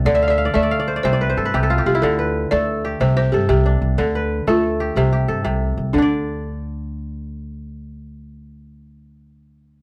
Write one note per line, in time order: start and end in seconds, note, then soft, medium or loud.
0.00 0.11 C3 medium
0.00 0.53 A3 medium
0.00 1.42 D4 medium
0.00 0.66 G4 medium
0.00 0.74 A4 medium
0.05 0.48 D2 medium
0.05 1.09 D3 medium
0.05 0.14 D5 loud
0.15 0.27 D5 medium
0.15 0.30 E5 medium
0.23 0.37 F5 medium
0.28 0.38 D5 medium
0.28 0.54 E5 medium
0.38 0.60 F5 medium
0.45 0.62 D5 medium
0.54 0.97 D2 medium
0.54 2.51 A3 medium
0.54 0.85 D5 medium
0.54 0.77 E5 medium
0.63 0.79 D5 medium
0.71 1.71 F5 medium
0.79 0.96 D5 medium
0.88 1.04 C5 medium
0.96 1.12 D5 medium
1.03 1.32 C2 medium
1.03 1.53 C3 medium
1.03 1.88 C5 medium
1.03 1.27 C5 medium
1.13 2.24 D5 medium
1.21 1.45 B4 medium
1.30 1.51 C5 medium
1.37 1.51 G2 medium
1.37 1.63 A4 medium
1.45 2.18 B4 medium
1.54 1.82 C2 medium
1.54 2.07 C3 medium
1.54 1.78 G4 medium
1.63 2.51 A4 medium
1.70 1.86 F4 medium
1.78 2.84 G4 medium
1.86 2.00 C2 medium
1.86 3.38 F4 medium
1.86 2.03 G4 medium
1.95 3.51 E4 medium
2.02 2.44 D2 medium
2.02 3.05 D3 medium
2.02 2.32 A4 medium
2.19 3.07 B4 medium
2.51 2.93 D2 medium
2.51 4.47 A3 medium
2.51 3.33 A4 medium
2.51 2.81 D5 medium
2.85 3.16 G4 medium
3.00 3.28 C2 medium
3.00 3.48 C3 medium
3.00 3.16 C5 medium
3.16 4.58 G4 medium
3.16 3.33 C5 medium
3.32 3.47 G2 medium
3.32 3.49 G4 medium
3.32 4.47 A4 medium
3.49 3.77 C2 loud
3.49 4.03 C3 medium
3.49 3.95 G4 medium
3.66 5.34 D4 medium
3.82 3.96 C2 medium
3.98 4.40 D2 medium
3.98 5.01 D3 medium
3.98 4.48 A4 medium
4.15 5.03 B4 medium
4.47 4.89 D2 medium
4.47 6.47 A3 medium
4.47 4.99 F4 medium
4.47 5.28 A4 medium
4.80 5.12 G4 medium
4.96 5.24 C2 medium
4.96 5.43 C3 medium
4.96 5.74 G4 medium
5.13 6.54 G4 medium
5.28 5.43 G2 medium
5.28 6.60 A4 medium
5.45 5.73 C2 medium
5.45 5.99 C3 medium
5.77 5.92 C2 medium
5.93 9.82 D2 medium
5.93 9.82 D3 medium
5.93 9.82 D4 medium
5.98 9.82 D4 medium
6.02 9.82 D5 medium